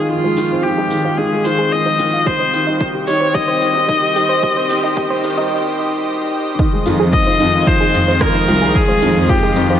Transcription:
0.00 0.10 D#3 medium
0.00 2.27 F3 medium
0.00 0.24 G#3 medium
0.00 2.27 G#3 medium
0.00 0.51 C4 medium
0.00 0.78 D#4 medium
0.00 1.05 F4 medium
0.00 3.72 F4 medium
0.00 0.11 G#4 medium
0.00 9.80 D#5 medium
0.09 0.23 D#3 medium
0.09 0.64 F4 medium
0.24 0.37 G#3 medium
0.24 0.33 C5 medium
0.37 0.50 D#3 medium
0.37 0.47 D#4 medium
0.37 shaker medium
0.51 0.64 C4 medium
0.63 0.77 D#3 medium
0.63 0.74 F4 medium
0.63 1.19 G4 medium
0.78 0.86 D#4 medium
0.78 0.84 G#4 loud
0.91 0.99 D#3 medium
0.91 shaker medium
1.05 1.18 F4 medium
1.05 1.14 C5 medium
1.17 1.31 D#3 medium
1.17 1.28 D#4 medium
1.17 1.46 G#4 medium
1.32 1.45 G#3 medium
1.44 1.58 D#3 medium
1.44 1.55 F4 medium
1.44 1.74 C5 loud
1.44 shaker medium
1.58 1.72 C4 medium
1.58 1.64 G#4 loud
1.72 1.85 D#3 medium
1.72 2.28 D#5 loud
1.86 1.94 D#4 medium
1.86 1.95 C5 medium
1.99 2.07 D#3 medium
1.99 2.09 D#4 medium
1.99 shaker medium
2.13 2.26 F4 medium
2.26 2.40 D#3 medium
2.26 6.59 G3 medium
2.26 2.36 G4 medium
2.26 2.81 C5 loud
2.26 kick loud
2.36 2.53 C4 medium
2.36 6.60 G4 medium
2.36 2.45 C5 loud
2.53 2.66 D#3 medium
2.53 shaker medium
2.59 7.98 C5 medium
2.67 2.80 D#4 medium
2.67 2.76 D#5 medium
2.80 2.94 D#3 medium
2.80 2.90 D#4 medium
2.80 kick loud
2.94 3.02 G4 medium
3.07 3.16 D#3 medium
3.07 3.17 G4 medium
3.07 3.36 C#5 loud
3.07 shaker medium
3.21 3.27 C5 medium
3.21 3.33 C5 medium
3.34 3.48 D#3 medium
3.34 3.44 G4 medium
3.34 5.51 D#5 loud
3.34 kick loud
3.48 3.61 C4 medium
3.48 3.54 C5 loud
3.61 3.75 D#3 medium
3.61 shaker medium
3.75 3.88 D#4 medium
3.75 3.84 D#5 medium
3.88 4.02 D#3 medium
3.88 3.98 D#4 medium
3.88 kick loud
4.02 4.10 G4 medium
4.16 4.24 D#3 loud
4.16 4.25 G4 medium
4.16 shaker medium
4.29 4.35 C5 loud
4.29 4.41 C5 medium
4.43 4.56 D#3 medium
4.43 4.52 G4 medium
4.43 kick loud
4.56 4.69 C4 medium
4.56 4.62 C5 loud
4.70 4.83 D#3 medium
4.70 shaker medium
4.83 4.95 D#4 medium
4.83 4.93 D#5 medium
4.97 5.10 D#3 medium
4.97 5.06 G4 medium
4.97 kick loud
5.10 5.23 C4 medium
5.10 5.16 C5 loud
5.24 5.37 D#3 loud
5.24 shaker medium
5.37 5.49 D#4 medium
5.37 5.47 D#5 medium
6.59 6.72 D#3 medium
6.59 9.80 F3 medium
6.59 6.69 D#4 medium
6.59 kick loud
6.68 9.80 F4 medium
6.73 6.86 G#3 medium
6.86 7.04 F2 loud
6.86 6.99 D#3 medium
6.86 9.80 G#3 medium
6.86 6.96 F4 medium
6.86 shaker medium
7.00 7.12 C4 medium
7.00 7.05 G#4 loud
7.13 7.26 D#3 medium
7.13 7.69 D#5 loud
7.13 kick loud
7.27 7.34 D#4 medium
7.27 7.36 C5 medium
7.40 7.58 F2 loud
7.40 7.48 D#3 loud
7.40 7.49 D#4 medium
7.40 shaker medium
7.54 7.67 F4 medium
7.67 7.80 D#3 medium
7.67 7.77 F4 medium
7.67 8.23 C5 loud
7.67 kick loud
7.80 7.93 G#3 medium
7.80 7.86 G#4 loud
7.94 8.12 F2 medium
7.94 8.07 D#3 loud
7.94 shaker medium
8.08 8.21 C4 medium
8.08 8.17 C5 medium
8.21 8.34 D#3 medium
8.21 8.31 D#4 medium
8.21 8.77 A#4 loud
8.21 kick loud
8.21 cross-stick medium
8.34 8.42 D#4 medium
8.48 8.66 C2 medium
8.48 8.56 D#3 loud
8.48 8.58 F4 medium
8.48 shaker medium
8.62 8.75 F4 medium
8.62 8.67 G#4 loud
8.75 8.88 D#3 medium
8.75 9.30 G#4 loud
8.75 kick loud
8.88 9.02 G#3 medium
8.88 8.98 C5 medium
9.02 9.20 F2 loud
9.02 9.15 D#3 medium
9.02 9.12 D#4 medium
9.02 shaker medium
9.16 9.29 C4 medium
9.29 9.42 D#3 medium
9.29 9.39 F4 medium
9.29 9.80 G4 medium
9.29 kick loud
9.43 9.51 D#4 medium
9.43 9.49 G#4 loud
9.56 9.74 F2 loud
9.56 9.64 D#3 loud
9.56 shaker medium
9.70 9.80 F4 medium
9.70 9.79 C5 medium

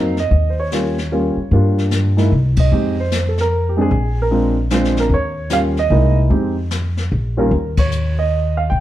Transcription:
0.00 0.28 F2 medium
0.00 0.15 F#3 medium
0.00 0.15 A#3 medium
0.00 0.15 C4 medium
0.00 0.15 D#4 medium
0.00 0.19 F5 medium
0.17 0.50 D#5 medium
0.17 snare soft
0.31 1.33 D#2 medium
0.31 brush sweep soft
0.31 kick soft
0.50 0.58 C5 medium
0.60 1.75 C#5 medium
0.71 0.95 G3 soft
0.71 0.95 A#3 medium
0.71 0.96 C#4 soft
0.71 0.96 F4 medium
0.71 snare medium
0.71 hi-hat pedal soft
0.98 snare soft
1.12 1.35 G3 medium
1.12 1.35 A#3 medium
1.12 1.35 C#4 medium
1.12 1.35 F4 medium
1.36 muted upright bass stroke soft
1.51 2.27 G2 medium
1.51 2.13 G3 medium
1.51 2.13 A#3 medium
1.51 2.13 D4 medium
1.51 2.13 F4 medium
1.51 brush sweep soft
1.51 kick soft
1.78 snare soft
1.91 snare medium
1.91 hi-hat pedal soft
2.17 2.30 G#3 soft
2.17 2.30 A#3 soft
2.17 2.30 D#4 soft
2.17 2.31 E4 medium
2.17 snare soft
2.32 2.69 C2 medium
2.56 3.00 D#5 medium
2.56 kick medium
2.56 ride medium
2.72 3.88 F2 medium
2.72 2.95 G#3 soft
2.72 2.95 C4 soft
2.72 2.95 D#4 soft
2.72 2.95 G4 medium
2.72 brush sweep soft
3.00 3.28 C5 medium
3.11 snare medium
3.11 hi-hat pedal medium
3.29 3.38 A4 medium
3.38 3.71 A#4 medium
3.38 snare soft
3.69 3.78 G4 medium
3.77 3.90 G#3 medium
3.77 3.90 C4 medium
3.77 3.90 D4 medium
3.77 3.80 G#4 medium
3.81 4.21 G#4 medium
3.91 5.07 A#1 medium
3.91 brush sweep soft
3.91 kick soft
4.22 4.57 A#4 medium
4.31 4.55 G#3 medium
4.31 4.55 C4 soft
4.31 4.55 D4 soft
4.31 4.55 F4 medium
4.70 5.12 G#3 medium
4.70 5.12 C4 medium
4.70 5.12 D4 medium
4.70 5.12 F4 medium
4.70 5.00 C5 medium
4.70 snare medium
4.70 hi-hat pedal medium
4.84 snare soft
4.96 5.12 A#4 medium
4.96 snare soft
5.10 5.87 D#2 medium
5.10 brush sweep soft
5.10 kick soft
5.14 5.54 C#5 medium
5.50 5.75 G3 medium
5.50 5.75 A#3 soft
5.50 5.75 C#4 soft
5.50 5.75 F4 medium
5.50 5.59 F5 medium
5.50 snare medium
5.50 hi-hat pedal soft
5.77 6.16 D#5 medium
5.77 snare soft
5.90 6.28 C2 medium
5.90 6.28 G#3 medium
5.90 6.31 A#3 soft
5.90 6.29 D#4 medium
5.90 6.32 E4 medium
6.30 7.07 F2 medium
6.30 6.54 G#3 medium
6.30 6.54 C4 soft
6.30 6.54 D#4 soft
6.30 6.55 G4 medium
6.30 brush sweep soft
6.30 kick soft
6.71 snare medium
6.71 hi-hat pedal soft
6.97 snare soft
7.12 7.49 A#1 medium
7.37 7.50 D#2 medium
7.37 7.50 G3 medium
7.37 7.51 A#3 medium
7.37 7.51 C#4 medium
7.37 7.51 F4 medium
7.37 7.79 A#4 medium
7.51 8.68 D#2 medium
7.51 brush sweep soft
7.51 kick soft
7.77 8.20 C#5 medium
7.77 kick medium
7.77 ride medium
7.91 hi-hat pedal soft
8.19 8.59 D#5 medium
8.57 8.71 F5 medium
8.70 8.80 A#1 medium
8.70 8.80 G5 medium
8.70 brush sweep soft
8.70 kick soft

